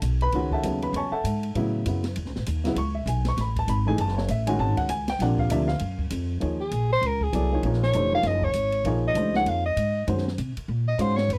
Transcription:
0.02 B1, hi-hat pedal, ride
0.21 B4 B5, ride
0.32 C#2 D#3 G#3 C#4 F#4, ride
0.51 A4 E5 F#5 A5, kick
0.63 D#2 C#3 F#3 B3 C#4, hi-hat pedal, ride
0.82 B4 B5, ride
0.93 E2 C#6, ride
0.97 C#5 G#5 A5
1.11 A4 E5 F#5 A5, muted upright bass stroke
1.24 G#2, hi-hat pedal, ride
1.43 ride
1.55 A2 C#3 F#3 B3 E4, ride
1.85 F#2 C#3 F#3 B3 E4, hi-hat pedal, ride
2.04 snare, ride
2.16 E2, ride
2.25 C#2, snare
2.35 A1, snare
2.46 D#2, hi-hat pedal, ride
2.64 C#3 F#3 B3 E4, snare, ride
2.75 C#2 C#6, ride
2.95 E5
3.06 B1 G#5, hi-hat pedal, ride
3.25 C#6, snare, ride
3.37 A1, snare, ride
3.41 B5
3.56 A5, kick, ride
3.68 G#1 B5, hi-hat pedal, ride
3.86 E3 A3 D#4 G#4 G#5
3.98 F#1 A5, ride
4.08 snare
4.18 C#5, snare
4.28 A1 E5, hi-hat pedal, ride
4.47 D#3 G#3 C#4 F#4 G#5, ride
4.59 G#1 A5
4.77 F#5, muted upright bass stroke, kick, ride
4.89 C#2 G#5, hi-hat pedal, ride
5.08 G5, snare, ride
5.19 A#1 C3 F3 A#3 D4 F#5, snare, ride
5.38 F5, kick
5.49 D2 C3 F3 A#3 D4 E5, hi-hat pedal, ride
5.68 F5, snare
5.79 F#2, ride
5.99 kick
6.10 F2, hi-hat pedal, ride
6.40 D#2 F3 A#3 D#4 G#4 C#5, ride
6.60 G#4
6.71 A#1, hi-hat pedal, ride
6.92 C5
7.01 C#2, ride
7.07 A#4
7.21 G#4, kick
7.33 C2 F#3 B3 E4 A4 D5, hi-hat pedal, ride
7.53 F3 A#3 D#4 G#4 C#5
7.63 A#1 F3 A#3 D#4 G#4 C#5, ride
7.73 snare
7.83 C#5, snare
7.93 F1 E3 A3 D4 G4 C5, hi-hat pedal, ride
8.13 F3 A#3 D#4 G#4 C#5 F5
8.23 F#1 D#5, snare, ride
8.42 C#5, kick
8.53 G#1, hi-hat pedal, ride
8.72 ride
8.84 A#1 F3 A#3 D#4 G#4 C#5, ride
9.07 D#5
9.14 C#2 E3 A3 D4 G4 C5, hi-hat pedal, ride
9.34 F3 A#3 D#4 G#4 C#5 F#5, snare
9.45 F2 F5, ride
9.65 D#5
9.76 G#2, hi-hat pedal, ride
10.07 F#2 D#3 G#3 C#4 F#4 C5, ride
10.18 snare
10.28 snare
10.38 C3, hi-hat pedal, ride
10.57 muted upright bass stroke, ride
10.68 A#2
10.88 D#5
10.98 G#2 G#3 C#4 F#4 C5 F5, hi-hat pedal, ride
11.16 C#5, snare
11.29 F#2, ride
11.33 B4

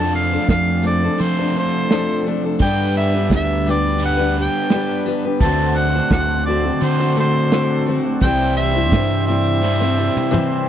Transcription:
Already playing: F2 F3 A3 C4 F4 A4 C5 A5
0.00 D4
0.12 F5, closed hi-hat
0.32 D4 A4 C5
0.48 F2 F5, kick, snare, closed hi-hat
0.82 A3 D4 A4 C5, closed hi-hat
0.87 D5
1.03 D4 A4 C5
1.18 F3 A3 C4 F4 A4 C5, closed hi-hat
1.39 D4 A4 C5
1.54 A3 D4 A4 C5, closed hi-hat
1.59 C5
1.90 F3 A3 D4 A4, snare, closed hi-hat
1.94 C5
2.26 A3 D4 A4 C5, closed hi-hat
2.44 D4 A4 C5
2.60 G2 G3 B3 D4 G4 B4 G5, kick, closed hi-hat
2.65 B4
2.95 E5, closed hi-hat
3.14 D4 G4 B4
3.30 D2, kick, snare, closed hi-hat
3.36 E5
3.65 G3 D4 G4 B4, closed hi-hat
3.71 D5
4.00 G3 B3 D4 B4, closed hi-hat
4.05 F#5
4.17 D4 G4 B4
4.36 G3 D4 G4 B4, closed hi-hat
4.41 G5
4.69 G3 D4, snare, closed hi-hat
4.74 G4 B4
5.05 G3 D4 G4 B4, closed hi-hat
5.25 D4 G4 B4
5.40 D2 D3 A3 C4 D4 F#4 A4 C5 A5, kick, closed hi-hat
5.45 F#4
5.76 F#5, closed hi-hat
5.95 C4 F#4 C5
6.10 D2 F#5, kick, snare, closed hi-hat
6.46 A3 C4 F#4 D5, closed hi-hat
6.50 C5
6.64 C4 F#4 C5
6.81 D3 A3 C4 F#4 C5, closed hi-hat
6.99 C4 F#4 C5
7.15 A3 C4 F#4 C5, closed hi-hat
7.20 C5
7.51 D3 A3 C4 F#4 C5, snare, closed hi-hat
7.86 A3 C4 F#4 C5, closed hi-hat
8.03 C4 F#4 C5
8.20 C2 C3 E3 G3 C4 E4 G4 C5 G5, kick, closed hi-hat
8.25 E4 C5
8.57 E5, closed hi-hat
8.75 G3 C4 E4 C5
8.92 G2, kick, snare, closed hi-hat
9.27 G3 C4 E4 E5, closed hi-hat
9.31 C5
9.62 C3 E3 G3 C4 E4 C5, snare
9.80 G3 C4 E4 C5, snare
9.98 G3 C4 E4 C5
10.17 high tom
10.31 C3 E3 G3 C4 E4 C5, mid tom

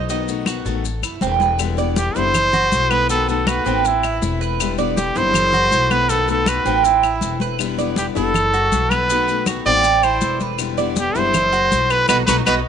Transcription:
Already playing: B1
0.09 B2 D#3 A3 B3 D#4 F#4, high conga, maracas
0.28 D#3 A3 B3 F#4, high conga, maracas
0.46 D#3 A3 B3 F#4, high conga, claves, maracas
0.65 A1 D#3 A3 B3 F#4 A4, maracas
0.84 muted steel-string acoustic guitar stroke, high conga, maracas
1.02 F#1 E4, high conga, claves, maracas
1.21 E1 E3 A3 C4 E4, high conga, maracas
1.40 B4, high conga, maracas
1.59 B2 D3 G3 B3 E4, high conga, claves, maracas
1.77 D3 G3 B3 E4 D5, high conga, maracas
1.96 D3 G3 B3 E4 G4, high conga, maracas
2.15 F#1 D3 G3 B3 E4 C5, maracas
2.35 muted steel-string acoustic guitar stroke, high conga, low conga, claves, maracas
2.53 F#4, high conga, low conga, maracas
2.72 B1 E3 A3 E4 F#4, high conga, maracas
2.90 B3 B4, high conga, claves, maracas
3.09 B2 D#3 A3 B3 F#4 A4, high conga, maracas
3.29 D#3 A3 B3 F#4 A4, high conga, maracas
3.47 D#3 A3 B3 F#4 B4, high conga, claves, maracas
3.65 A1 D#3 A3 B3 C4 F#4, high conga, maracas
3.85 E4, muted steel-string acoustic guitar stroke, high conga, maracas
4.03 E4, high conga, claves, maracas
4.22 E1 E3 A3 C4 E4, high conga, maracas
4.41 B4, maracas
4.60 B2 D3 G3 B3 E4, high conga, claves, maracas
4.78 D3 G3 B3 E4 D5, high conga, maracas
4.96 D3 G3 B3 E4 G4, high conga, maracas
5.15 F#1 D3 G3 B3 E4 C5, maracas
5.34 muted steel-string acoustic guitar stroke, high conga, low conga, claves, maracas
5.53 F#4, high conga, low conga, maracas
5.71 B1 E3 A3 E4 F#4, high conga, maracas
5.90 B3 B4, high conga, claves, maracas
6.09 B2 D#3 A3 B3 F#4 A4, high conga, maracas
6.27 D#3 A3 B3 F#4 A4, high conga, maracas
6.46 A3 B3 F#4 B4, high conga, claves, maracas
6.65 A1 D#3 A3 B3 C4 F#4, high conga, maracas
6.84 E4, muted steel-string acoustic guitar stroke, high conga, maracas
7.02 E4, high conga, claves, maracas
7.21 E1 E3 A3 C4 E4, high conga, maracas
7.40 B4, high conga, maracas
7.58 B2 D3 G3 B3 E4, high conga, claves, maracas
7.78 D3 G3 B3 E4 D5, high conga, maracas
7.96 D3 G3 B3 E4 G4, high conga, maracas
8.15 F#1 D3 G3 B3 E4 A4, maracas
8.34 muted steel-string acoustic guitar stroke, high conga, low conga, claves, maracas
8.53 F#4, high conga, maracas
8.72 B1 E3 A3 E4 F#4, high conga, maracas
8.90 B3 B4, high conga, claves, maracas
9.09 B2 D#3 A3 B3 F#4, high conga, maracas
9.28 D#3 A3 B3 F#4, high conga, maracas
9.46 D#3 A3 B3 F#4, high conga, claves, maracas
9.65 A1 D#3 A3 B3 C4 F#4 D5, high conga, maracas
9.84 muted steel-string acoustic guitar stroke, high conga, maracas
10.03 E4 C5, high conga, claves, maracas
10.21 E1 E3 A3 C4 E4, high conga, maracas
10.40 B4, high conga, maracas
10.59 B2 D3 G3 B3 E4, high conga, claves, maracas
10.77 D3 G3 B3 E4 D5, high conga, maracas
10.96 G3 B3 E4 G4, high conga, maracas
11.15 F#1 D3 G3 B3 E4 C5, maracas
11.34 muted steel-string acoustic guitar stroke, high conga, low conga, claves, maracas
11.53 F#4, high conga, maracas
11.71 B1 E3 A3 E4 F#4, high conga, maracas
11.90 B3 B4, claves, maracas
12.08 B1 F#3 A3 B3 D#4 F#4 B4, high conga, claves, maracas
12.27 B1 F#3 A3 B3 D#4 F#4 B4, high conga, claves, maracas
12.46 B1 F#3 A3 B3 D#4 F#4 B4, high conga, claves, maracas

